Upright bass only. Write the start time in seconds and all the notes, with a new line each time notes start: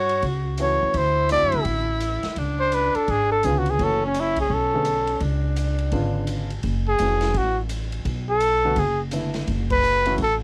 Already playing: G2
0.23 C#2
0.82 D#2
0.94 D2
1.43 F#2
1.54 C#2
1.65 A1
2.25 muted upright bass stroke
2.37 C#2
2.95 muted upright bass stroke
3.08 G#1
3.44 C#2
3.79 F#1
4.50 B1
5.21 C#2
5.92 G#1
6.64 F#1
7.00 F1
7.34 A1
8.05 B1
8.76 F#1
9.47 F#1
10.18 A1